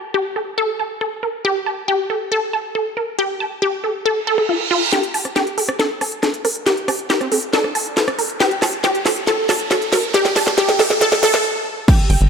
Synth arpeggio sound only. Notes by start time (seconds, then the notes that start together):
0.14 G4
0.36 A4
0.58 A4
0.79 A5
1.01 A4
1.23 A#4
1.45 G4
1.66 A5
1.88 G4
2.10 A4
2.32 A4
2.53 A5
2.75 A4
2.97 A#4
3.19 G4
3.40 A5
3.62 G4
3.84 A4
4.06 A4
4.27 A4
4.38 A4
4.49 F4
4.71 F4
4.92 G4
5.14 A5
5.36 G4
5.58 A4
5.79 A4
6.01 A5
6.23 A4
6.45 A#4
6.66 G4
6.88 A5
7.10 G4
7.32 A4
7.53 A4
7.75 A5
7.97 A4
8.19 A#4
8.40 G4
8.62 A5
8.84 G4
9.06 A4
9.27 A4
9.49 A5
9.71 A4
9.93 A#4
10.14 G4
10.36 A5
10.58 G4
10.79 A4
11.01 A4
11.23 A4
11.34 A4
11.88 G4
12.10 G5